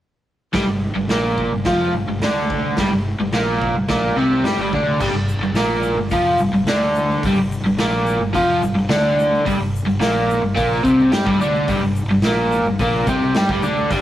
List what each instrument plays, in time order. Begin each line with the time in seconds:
0.53 fingered electric bass G1, overdriven electric guitar G2 G3, kick, snare, open hi-hat
0.67 fingered electric bass G1, overdriven electric guitar G2
0.94 fingered electric bass G1, overdriven electric guitar G2
1.08 fingered electric bass A#1, overdriven electric guitar A#2 A#3, snare, open hi-hat
1.38 kick
1.52 fingered electric bass G1, overdriven electric guitar G2
1.65 fingered electric bass F2, overdriven electric guitar F3 F4, kick, snare, open hi-hat
1.92 fingered electric bass G1, overdriven electric guitar G2
2.06 fingered electric bass G1, overdriven electric guitar G2
2.19 fingered electric bass D2, overdriven electric guitar D3, snare, open hi-hat
2.24 overdriven electric guitar D4
2.50 kick
2.77 fingered electric bass G1, overdriven electric guitar G2 G3, kick, snare, open hi-hat
2.90 fingered electric bass G1, overdriven electric guitar G2
3.19 fingered electric bass G1, overdriven electric guitar G2
3.33 fingered electric bass A#1, overdriven electric guitar A#2 A#3, snare, open hi-hat
3.62 kick
3.74 fingered electric bass G1, overdriven electric guitar G2
3.89 fingered electric bass A#1, overdriven electric guitar A#2 A#3, kick, snare, open hi-hat
4.16 fingered electric bass C2, overdriven electric guitar C3 C4
4.43 fingered electric bass G2, overdriven electric guitar G3 G4, snare, open hi-hat
4.57 fingered electric bass G1, overdriven electric guitar G2 G3
4.72 fingered electric bass D2, overdriven electric guitar D3 D4, kick
5.00 fingered electric bass G1, overdriven electric guitar G2 G3, kick, crash, shaker
5.12 fingered electric bass G1, overdriven electric guitar G2
5.28 shaker
5.38 fingered electric bass G1
5.43 overdriven electric guitar G2, shaker
5.52 fingered electric bass A#1, overdriven electric guitar A#2, snare, open hi-hat, shaker
5.56 overdriven electric guitar A#3
5.83 shaker
5.95 fingered electric bass G1, overdriven electric guitar G2
6.10 fingered electric bass F2, overdriven electric guitar F3 F4, kick, open hi-hat, shaker
6.37 fingered electric bass G1, overdriven electric guitar G2, shaker
6.51 fingered electric bass G1, overdriven electric guitar G2, shaker
6.64 fingered electric bass D2, overdriven electric guitar D3, snare, open hi-hat, shaker
6.68 overdriven electric guitar D4
6.95 shaker
7.11 shaker
7.23 fingered electric bass G1, overdriven electric guitar G2 G3, kick, open hi-hat, shaker
7.35 fingered electric bass G1, overdriven electric guitar G2
7.51 shaker
7.64 fingered electric bass G1, overdriven electric guitar G2, shaker
7.77 fingered electric bass A#1, overdriven electric guitar A#2 A#3, snare, open hi-hat, shaker
8.06 shaker
8.19 fingered electric bass G1, overdriven electric guitar G2
8.33 fingered electric bass F2, overdriven electric guitar F3 F4, kick, open hi-hat, shaker
8.62 fingered electric bass G1, overdriven electric guitar G2, shaker
8.75 fingered electric bass G1, overdriven electric guitar G2, shaker
8.89 fingered electric bass D2, overdriven electric guitar D3 D4, snare, open hi-hat, shaker
9.19 shaker
9.35 shaker
9.45 fingered electric bass G1, overdriven electric guitar G2 G3, kick, open hi-hat, shaker
9.59 fingered electric bass G1, overdriven electric guitar G2
9.76 shaker
9.85 fingered electric bass G1, overdriven electric guitar G2
9.89 shaker
9.99 fingered electric bass A#1, overdriven electric guitar A#2 A#3, snare, open hi-hat, shaker
10.30 shaker
10.42 fingered electric bass G1, overdriven electric guitar G2
10.55 fingered electric bass A#1, overdriven electric guitar A#2 A#3, kick, open hi-hat, shaker
10.83 fingered electric bass C2, overdriven electric guitar C3 C4, kick, shaker
10.99 shaker
11.12 fingered electric bass G2, overdriven electric guitar G3 G4, snare, open hi-hat, shaker
11.25 fingered electric bass G1, overdriven electric guitar G2 G3, kick
11.38 fingered electric bass D2, overdriven electric guitar D3 D4, shaker
11.55 shaker
11.67 fingered electric bass G1, overdriven electric guitar G2 G3, kick, open hi-hat, shaker
11.78 fingered electric bass G1
11.83 overdriven electric guitar G2
11.96 shaker
12.06 fingered electric bass G1
12.10 overdriven electric guitar G2, shaker
12.20 fingered electric bass A#1, snare, open hi-hat, shaker
12.25 overdriven electric guitar A#2 A#3
12.52 shaker
12.62 fingered electric bass G1, shaker
12.67 overdriven electric guitar G2
12.79 fingered electric bass A#1, overdriven electric guitar A#2 A#3, kick, open hi-hat, shaker
13.07 fingered electric bass C2, overdriven electric guitar C3 C4, kick, shaker
13.22 shaker
13.34 fingered electric bass G2, overdriven electric guitar G3 G4, snare, open hi-hat, shaker
13.49 fingered electric bass G1, overdriven electric guitar G2 G3, kick
13.62 fingered electric bass D2, overdriven electric guitar D3 D4, shaker
13.76 shaker
13.90 fingered electric bass G1, overdriven electric guitar G2 G3, kick, open hi-hat, shaker